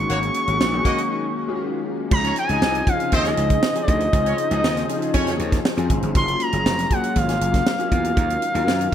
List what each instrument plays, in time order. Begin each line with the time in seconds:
Already playing: grand piano D#3 G#3 A#3 C#4 F#4, analog synth pad F#3 A#3 C#4 G#4, analog synth lead C#6
0.10 slap bass G#1, horn section A#3 F#4 C#5, closed hi-hat
0.23 closed hi-hat
0.34 closed hi-hat
0.46 slap bass G#1, grand piano D#3 G#3 A#3 C#4 F#4, closed hi-hat
0.60 slap bass A#1, snare
0.72 grand piano D#3 G#3 A#3 C#4 F#4
0.85 horn section A#3 F#4 D#5, kick, closed hi-hat
0.98 closed hi-hat
1.48 grand piano D#3 G#3 A#3 C#4 F4
1.55 grand piano F#4
2.11 slap bass C#2, analog synth pad C#3 D#4 F4 C5, grand piano F3 C4 C#4 D#4 G#4, analog synth lead A#5, kick, crash
2.24 horn section C#4 C#5, closed hi-hat
2.36 analog synth lead G#5, closed hi-hat
2.48 slap bass C#2, grand piano F3 C4 C#4 D#4 G#4, horn section D#4 D#5, closed hi-hat
2.62 slap bass C2, snare
2.75 closed hi-hat
2.86 grand piano F3 C4 C#4 D#4 G#4, analog synth lead F5, kick, closed hi-hat
3.00 closed hi-hat
3.12 slap bass D#2, horn section C4 C5, analog synth lead D#5, kick, closed hi-hat
3.24 grand piano F3 C4 C#4 D#4 G#4, snare, closed hi-hat
3.37 slap bass C#2, closed hi-hat
3.50 kick, closed hi-hat
3.63 snare
3.75 grand piano F3 C4 C#4 D#4 G#4, closed hi-hat
3.82 analog synth lead D5
3.88 slap bass D2, analog synth lead D#5, kick, closed hi-hat
4.00 closed hi-hat
4.12 slap bass C#2, grand piano F3 C4 C#4 D#4 G#4, kick, closed hi-hat
4.26 horn section C#4 C#5, closed hi-hat
4.38 closed hi-hat
4.50 slap bass C#2, grand piano F3 C4 C#4 D#4 G#4, horn section D#4 D#5, closed hi-hat
4.64 slap bass D#2, snare
4.77 snare, closed hi-hat
4.88 grand piano F3 C4 C#4 D#4 G#4, closed hi-hat
5.02 closed hi-hat
5.14 slap bass F2, horn section C#4 C#5, kick, closed hi-hat
5.26 grand piano F3 C4 C#4 D#4 G#4, snare, closed hi-hat
5.39 slap bass D#2, closed hi-hat
5.52 kick, snare, closed hi-hat
5.65 snare
5.77 slap bass F2, grand piano F3 C4 C#4 D#4 G#4, closed hi-hat
5.90 slap bass G#1, kick, closed hi-hat
6.03 slap bass G1, closed hi-hat
6.14 slap bass F#1, grand piano F#3 A#3 C#4 F4 G#4, analog synth pad F#3 G#3 A#3 F4, analog synth lead C6, kick, closed hi-hat
6.28 closed hi-hat
6.40 analog synth lead A#5, closed hi-hat
6.52 slap bass F#1, grand piano F#3 A#3 C#4 F4 G#4, closed hi-hat
6.66 slap bass F1, snare
6.79 snare, closed hi-hat
6.90 grand piano F#3 A#3 C#4 F4 G#4, analog synth lead F#5, kick, closed hi-hat
7.04 closed hi-hat
7.16 slap bass G#1, analog synth lead F5, kick, closed hi-hat
7.28 grand piano F#3 A#3 C#4 F4 G#4, snare, closed hi-hat
7.41 slap bass F#1, closed hi-hat
7.54 kick, snare, closed hi-hat
7.67 snare
7.78 grand piano F#3 A#3 C#4 F4 G#4, closed hi-hat
7.92 slap bass E2, analog synth lead F5, kick, closed hi-hat
8.05 closed hi-hat
8.16 slap bass D#2, analog synth pad D#3 F#3 C#4 F4, grand piano F#3 C#4 D#4 F4 A#4, kick, closed hi-hat
8.30 closed hi-hat
8.42 closed hi-hat
8.53 slap bass D#2, grand piano F#3 C#4 D#4 F4 A#4, closed hi-hat
8.67 slap bass F#2, snare
8.81 closed hi-hat
8.92 grand piano F#3